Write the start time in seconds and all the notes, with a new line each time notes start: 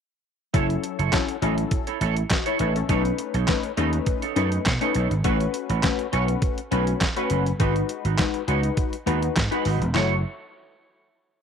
0.54 F#1 F#3 C#4 E4 A4 C#5, kick, closed hi-hat
0.69 muted clean electric guitar stroke, closed hi-hat
0.83 muted clean electric guitar stroke, closed hi-hat
0.99 F#1 E4 A4 C#5, closed hi-hat
1.12 F#3 C#4 E4 A4, kick, snare, clap, closed hi-hat
1.28 muted clean electric guitar stroke, closed hi-hat
1.42 A1 F#3 C#4 E4 A4 D#5, closed hi-hat
1.58 muted clean electric guitar stroke, closed hi-hat
1.71 muted clean electric guitar stroke, kick, closed hi-hat
1.87 E4 A4 C#5, closed hi-hat
2.01 A1 E4 A4 C#5, closed hi-hat
2.17 muted clean electric guitar stroke, closed hi-hat
2.30 F#4 D#5, muted clean electric guitar stroke, kick, snare, clap, closed hi-hat
2.46 E4 A4 C#5, closed hi-hat
2.59 A1 D#4 E4 A4 B4 C#5, closed hi-hat
2.75 C#4 A4, muted clean electric guitar stroke, closed hi-hat
2.89 B1 A3 C#4 D#4 A4 B4 C#5, kick, closed hi-hat
3.04 muted clean electric guitar stroke, closed hi-hat
3.18 muted clean electric guitar stroke, closed hi-hat
3.34 B1 D#4 A4 C#5, closed hi-hat
3.48 A3 C#4 D#4 B4, kick, snare, clap, closed hi-hat
3.63 muted clean electric guitar stroke, closed hi-hat
3.77 D#2 A3 C#4 D#4 A4 B4 D#5, closed hi-hat
3.93 muted clean electric guitar stroke, closed hi-hat
4.06 muted clean electric guitar stroke, kick, closed hi-hat
4.22 D#4 A4 C#5, closed hi-hat
4.36 F#2 A3 C#4 D#4 A4 B4 C#5, closed hi-hat
4.52 muted clean electric guitar stroke, closed hi-hat
4.65 B2, muted clean electric guitar stroke, kick, snare, clap, closed hi-hat
4.81 A3 C#4 D#4 A4 B4 C#5, closed hi-hat
4.95 B1 D#4 A4 C#5, closed hi-hat
5.11 G#1, muted clean electric guitar stroke, closed hi-hat
5.24 A1 A3 C#4 F#4 B4, kick, closed hi-hat
5.40 muted clean electric guitar stroke, closed hi-hat
5.54 muted clean electric guitar stroke, closed hi-hat
5.69 A1 C#4 F#4 B4, closed hi-hat
5.83 A3 C#4 F#4 B4, kick, snare, clap, closed hi-hat
5.99 muted clean electric guitar stroke, closed hi-hat
6.12 B1 A3 C#4 F#4 B4 C#5, closed hi-hat
6.28 muted clean electric guitar stroke, closed hi-hat
6.42 kick, closed hi-hat
6.58 muted clean electric guitar stroke, closed hi-hat
6.71 B1 A3 C#4 F#4 B4, closed hi-hat
6.87 muted clean electric guitar stroke, closed hi-hat
7.01 muted clean electric guitar stroke, kick, snare, clap, closed hi-hat
7.16 A3 C#4 F#4 B4, closed hi-hat
7.30 F#1 C#4 F#4 B4, closed hi-hat
7.46 muted clean electric guitar stroke, closed hi-hat
7.59 G#1 G#3 D#4 F#4 B4, kick, closed hi-hat
7.76 muted clean electric guitar stroke, closed hi-hat
7.89 muted clean electric guitar stroke, closed hi-hat
8.05 G#1 D#4 F#4 B4, closed hi-hat
8.18 G#3 D#4 F#4 B4, kick, snare, clap, closed hi-hat
8.34 muted clean electric guitar stroke, closed hi-hat
8.48 C#2 G#3 D#4 F#4 B4 C#5, closed hi-hat
8.63 muted clean electric guitar stroke, closed hi-hat
8.77 kick, closed hi-hat
8.93 muted clean electric guitar stroke, closed hi-hat
9.06 D#2 G#3 D#4 F#4 B4, closed hi-hat
9.22 muted clean electric guitar stroke, closed hi-hat
9.36 G#2, muted clean electric guitar stroke, kick, snare, clap, closed hi-hat
9.51 G#3 D#4 F#4 B4, closed hi-hat
9.65 G#1 D#4 F#4 B4, open hi-hat
9.81 E1, muted clean electric guitar stroke, closed hi-hat
9.95 F#1 A3 E4 F#4 A4 C#5, snare, clap